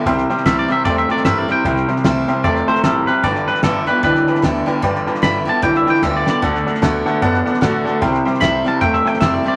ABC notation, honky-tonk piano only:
X:1
M:4/4
L:1/8
Q:"Swing" 1/4=151
K:G
V:1 name="Honky-tonk piano"
[ceg] [ceg] [cg] [ceg] [ceg] [ceg] [ceg] [ceg] | [ceg] [ceg] [ceg] [ceg] [ceg] [ceg] [ceg] [ceg] | [Bdg] [Bdg] [Bdg] [Bdg] [Bdg] [Bdg] [Bdg] [Bdg] | [Bdg] [Bdg] [Bdg] [Bdg] [Bdg] [Bdg] [Bdg] [Bdg] |
[Adf] [Adf] [Adf] [Adf] [Adf] [Adf] [Adf] [Adf] | [ceg] [ceg] [ceg] [ceg] [ceg] [ceg] [ceg] [ceg] |]